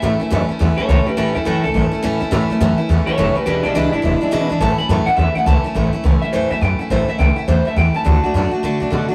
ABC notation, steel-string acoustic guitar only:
X:1
M:4/4
L:1/8
Q:"Swing" 1/4=209
K:A
V:1 name="Steel-string acoustic guitar"
[A,,E,A,CE] [A,CE] [A,,E,A,CE] [A,CE] [E,A,CE] [A,CE] [A,,E,A,CE] [A,CE] | [A,,E,A,CE] [A,CE] [A,,E,A,CE] [A,CE] [E,A,CE] [A,CE] [A,,E,A,CE] [A,CE] | [A,,E,A,CE] [A,CE] [A,,E,A,CE] [A,CE] [E,A,CE] [A,CE] [A,,E,A,CE] [A,CE] | [E,,B,,E,G,DE] [E,G,DE] [E,,B,,E,G,DE] [E,G,DE] [E,G,DE] [E,G,DE] [E,,B,,E,G,DE] [E,G,DE] |
[A,,E,A,CE] [A,CE] [A,,E,A,CE] [A,CE] [E,A,CE] [A,CE] [A,,E,A,CE] [A,CE] | [A,,E,A,CE] [A,CE] [E,A,CE] [A,CE] [A,,E,A,CE] [A,CE] [E,A,CE] [A,CE] | [A,,E,A,CE] [A,CE] [E,A,CE] [A,CE] [A,,E,A,CE] [A,CE] [E,A,CE] [A,CE] | [D,A,DF] [A,DF] [D,A,DF] [A,DF] [D,A,DF] [A,DF] [D,A,DF] [A,DF] |]